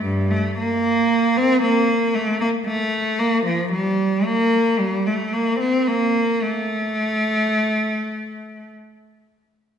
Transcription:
\new Staff \with { instrumentName = "Cello" } { \time 3/4 \key a \phrygian \tempo 4 = 55 g,16 a16 bes8. c'16 bes8 a16 bes16 a8 | bes16 f16 g8 bes8 g16 a16 bes16 c'16 bes8 | a2 r4 | }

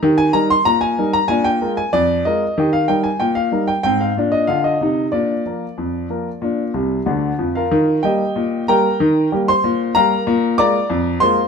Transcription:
<<
  \new Staff \with { instrumentName = "Grand piano" } { \time 2/4 \key ees \major \tempo 4 = 94 r16 aes''16 bes''16 c'''16 bes''16 aes''8 bes''16 | aes''16 g''8 aes''16 d''8 ees''8~ | ees''16 f''16 g''16 aes''16 g''16 f''8 g''16 | g''16 f''8 ees''16 f''16 ees''8. |
d''2~ | d''4 r8. <f' bes' f''>16~ | <f' bes' f''>8 <g' ees'' g''>4 <bes' g'' bes''>8~ | <bes' g'' bes''>8. <c'' c'''>8. <bes' f'' bes''>8~ |
<bes' f'' bes''>8 <d'' bes'' d'''>4 <c'' c'''>8 | }
  \new Staff \with { instrumentName = "Grand piano" } { \clef bass \time 2/4 \key ees \major <ees g'>8 <g ees' bes'>8 bes,8 <g ees' bes'>8 | <bes, d'>8 <aes f' bes'>8 f,8 <aes f' bes'>8 | <ees g'>8 <g ees' bes'>8 bes,8 <g ees' bes'>8 | <aes, c'>8 <bes, d'>8 <d f'>8 <c ees'>8 |
<bes, d'>8 <f bes bes'>8 f,8 <f bes bes'>8 | <bes, d'>8 <c, c>8 <d, d>8 <f, f>8 | ees8 <g bes>8 bes,8 <g bes g'>8 | ees8 <g bes g'>8 bes,8 <g bes g'>8 |
bes,8 <aes bes f'>8 f,8 <aes bes f'>8 | }
>>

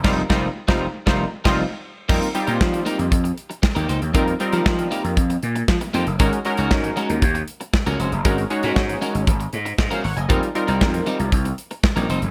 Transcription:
<<
  \new Staff \with { instrumentName = "Analog polysynth" } { \time 4/4 \key f \minor \tempo 4 = 117 << { r1 | r1 | r1 | r1 |
r2. r16 <c'' f''>16 <des'' ges''>16 <ees'' aes''>16~ | <ees'' aes''>16 r2. r8. | } \\ { <g ees' f' c''>8 <g ees' f' c''>8 r16 <g ees' f' c''>8 r16 <g ees' f' c''>8 r16 <g ees' f' c''>8 r8. | <g c' ees' f' bes'>16 r16 <g c' ees' f' g'>4. r2 | <g c' ees' f' bes'>16 r16 <g c' ees' f' bes'>4. r2 | <aes des' ees' ges' bes'>16 r16 <aes des' ees' ges' bes'>4. r2 |
<aes des' ees' ges' bes'>16 r16 <aes des' ees' ges' des''>4. r2 | <g c' ees' f' bes'>16 r16 <g c' ees' f' bes'>4. r2 | } >> }
  \new Staff \with { instrumentName = "Clean electric guitar" } { \time 4/4 \key f \minor <g c' ees' bes'>8 <g c' ees' bes'>8 r16 <g c' ees' bes'>8 r16 <g c' ees' bes'>8 r16 <g c' ees' bes'>8 r8. | <bes ees' g' bes'>16 r8 <bes ees' g' bes'>16 r8 <bes ees' g' bes'>16 r4. <bes ees' g' bes'>16 <bes ees' g' c''>16 r16 | <bes ees' g' bes'>16 r8 <bes ees' g' bes'>16 r8 <bes ees' g' bes'>16 r4. r16 <bes ees' g' c''>16 r16 | <aes des' ges' bes'>16 r8 <aes des' ges' bes'>16 r8 <aes des' ges' bes'>16 r4. <aes des' ges' bes'>16 <aes des' ges' c''>16 r16 |
<aes des' ges' bes'>16 r8 <aes des' ges' bes'>16 r8 <aes des' ges' bes'>16 r4. <aes des' ges' bes'>16 r8 | <g c' ees' bes'>16 r8 <g c' ees' bes'>16 r8 <g c' ees' bes'>16 r4. <g c' ees' bes'>16 <g c' ees' c''>16 r16 | }
  \new Staff \with { instrumentName = "Slap bass" } { \clef bass \time 4/4 \key f \minor f,,8 f,,8 r16 f,,8 r16 f,,8 r16 f,,8 r8. | f,16 r8 bes,16 f8 r16 f,16 f,8 r8. ees,16 des,16 ees,16 | f,8 r16 f16 f8 r16 f,16 f,8 bes,8 f16 r16 f,16 ges,,16 | aes,,16 r8 des,16 aes,8 r16 ees,16 ees,8 r8. des,16 f,,16 ges,,16 |
aes,,8 r16 aes,16 aes,8 r16 aes,,16 aes,,8 aes,8 aes,16 r16 aes,,16 ges,,16 | f,,16 r8 c,16 f,8 r16 c,16 c,8 r8. bes,,16 f,,16 ges,,16 | }
  \new DrumStaff \with { instrumentName = "Drums" } \drummode { \time 4/4 <cymc bd sn>8 <bd sn>8 r16 <bd sn>8. <bd sn>8. <cymc bd sn>16 r4 | <cymc bd>16 hh16 hh16 hh16 <bd sn>16 hh16 hh16 hh16 <hh bd>16 hh16 hh16 hh16 <bd sn>16 hh16 hh16 hh16 | <hh bd>16 hh16 hh16 hh16 <bd sn>16 hh16 hh16 hh16 <hh bd>16 hh16 hh16 hh16 <bd sn>16 hh16 hh16 hh16 | <hh bd>16 hh16 hh16 hh16 <bd sn>16 hh16 hh16 hh16 <hh bd>16 hh16 hh16 hh16 <bd sn>16 hh16 hh16 hh16 |
<hh bd>16 hh16 hh16 hh16 <bd sn>16 hh16 hh16 hh16 <hh bd>16 hh16 hh16 hh16 <bd sn>16 hh16 hho16 hh16 | <hh bd>16 hh16 hh16 hh16 <bd sn>16 hh16 hh16 hh16 <hh bd>16 hh16 hh16 hh16 <bd sn>16 hh16 hh16 hh16 | }
>>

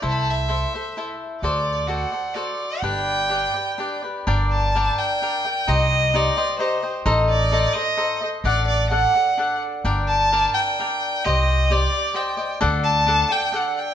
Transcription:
<<
  \new Staff \with { instrumentName = "Violin" } { \time 3/4 \key g \major \tempo 4 = 129 a''32 b''32 a''16 e''4. r4 | d''4 fis''4 d''4 | g''2~ g''8 r8 | \key g \minor r8 a''4 g''4. |
ees''4 d''4 c''8. r16 | r8 d''4 ees''4 r8 | d''8 d''8 fis''4. r8 | r8 a''4 g''4. |
ees''4 d''4 g''8. r16 | r8 a''4 g''8 fis''8 g''8 | }
  \new Staff \with { instrumentName = "Cavaquinho" } { \time 3/4 \key g \major <e' a' c'' e''>4 <e' a' c'' e''>8 <a' c'' e''>8 <e' a' c'' e''>4 | <fis' a' c'' d''>4 <fis' a' c'' d''>8 <a' c'' d''>8 <fis' a' c'' d''>4 | <d' g' b' d''>4 <d' g' b' d''>8 <g' b' d''>8 <d' g' b' d''>8 <g' b' d''>8 | \key g \minor <d' bes' d'' g''>4 <d' bes' d'' g''>4 <d' bes' d'' g''>8 <bes' d'' g''>8 |
<ees' g' c'' ees''>4 <ees' g' c'' ees''>8 <g' c'' ees''>8 <ees' g' c'' ees''>8 <g' c'' ees''>8 | <ees' a' c'' ees''>4 <ees' a' c'' ees''>8 <a' c'' ees''>8 <ees' a' c'' ees''>8 <a' c'' ees''>8 | <d' a' d'' fis''>4 <d' a' d'' fis''>8 <a' d'' fis''>8 <d' a' d'' fis''>4 | <d' bes' d'' g''>4 <d' bes' d'' g''>4 <d' bes' d'' g''>4 |
<g' c'' ees''>4 <g' c'' d''>4 <g' c'' d'' ees''>8 <c'' d'' ees''>8 | <d' a' d'' fis''>4 <d' a' d'' fis''>8 <a' d'' fis''>8 <d' a' d'' fis''>4 | }
  \new Staff \with { instrumentName = "Upright bass" } { \clef bass \time 3/4 \key g \major c,2 r4 | d,2 r4 | g,,2 r4 | \key g \minor g,,2 r4 |
c,2 r4 | a,,2 r4 | a,,2 r4 | g,,2 r4 |
c,2 r4 | d,2 r4 | }
>>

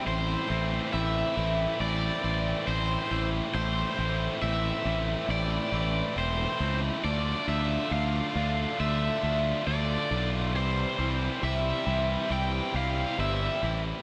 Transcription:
<<
  \new Staff \with { instrumentName = "Overdriven electric guitar" } { \time 4/4 \key a \minor \tempo 4 = 68 c''4 e''4 d''4 c''8. r16 | c''4 e''4 d''4 c''8. r16 | d''8 e''8 f''4 e''4 d''8. r16 | c''4 e''4 g''8 f''8 e''8. r16 | }
  \new Staff \with { instrumentName = "Distorted electric guitar" } { \time 4/4 \key a \minor <a, e a c' e'>8 <a, e a c' e'>8 <a, e a c' e'>8 <a, e a c' e'>8 <a, e a c' e'>8 <a, e a c' e'>8 <a, e a c' e'>8 <a, e a c' e'>8 | <a, e a c' e'>8 <a, e a c' e'>8 <a, e a c' e'>8 <a, e a c' e'>8 <a, e a c' e'>8 <a, e a c' e'>8 <a, e a c' e'>8 <a, e a c' e'>8 | <d a d' f'>8 <d a d' f'>8 <d a d' f'>8 <d a d' f'>8 <d a d' f'>8 <d a d' f'>8 <d a d' f'>8 <d a d' f'>8 | <c e g c' e'>8 <c e g c' e'>8 <c e g c' e'>8 <c e g c' e'>8 <c e g c' e'>8 <c e g c' e'>8 <c e g c' e'>8 <c e g c' e'>8 | }
  \new Staff \with { instrumentName = "Fingered electric bass" } { \clef bass \time 4/4 \key a \minor a,,8 a,,8 a,,8 a,,8 a,,8 a,,8 a,,8 a,,8 | a,,8 a,,8 a,,8 a,,8 a,,8 a,,8 e,,8 cis,8 | d,8 d,8 d,8 d,8 d,8 d,8 d,8 b,,8 | c,8 c,8 c,8 c,8 c,8 c,8 g,,8 a,,8 | }
>>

